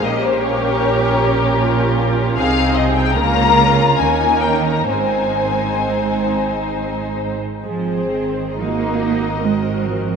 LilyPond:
<<
  \new Staff \with { instrumentName = "Violin section" } { \time 3/4 \key aes \major \tempo 4 = 73 ees''16 c''16 des''2 r8 | f''8 ees''16 g''16 bes''4 aes''8 g''16 bes''16 | aes''2~ aes''8 r8 | c''4 ees''2 | }
  \new Staff \with { instrumentName = "Violin section" } { \time 3/4 \key aes \major <g' bes'>2. | aes'4 <f' bes'>4 <ees' bes'>4 | <ees' c''>2~ <ees' c''>8. r16 | c'4 ees'4 c'4 | }
  \new Staff \with { instrumentName = "Viola section" } { \time 3/4 \key aes \major << { g'2 f'4 | ees'4 des'4 des'4 | c'2~ c'8. r16 | aes'4 ges'4 bes'4 | } \\ { des'2. | c'4 bes4 bes4 | aes2~ aes8. r16 | aes'4 f'8 ees'8 ges'4 | } >> }
  \new Staff \with { instrumentName = "Cello section" } { \clef bass \time 3/4 \key aes \major bes,2. | c4 des4 ees4 | aes,2~ aes,8. r16 | f8 ees8 bes4 aes8 f8 | }
  \new Staff \with { instrumentName = "Double bass section" } { \clef bass \time 3/4 \key aes \major bes,,2. | c,4 des,4 ees,4 | aes,,2~ aes,,8. r16 | aes,,2. | }
>>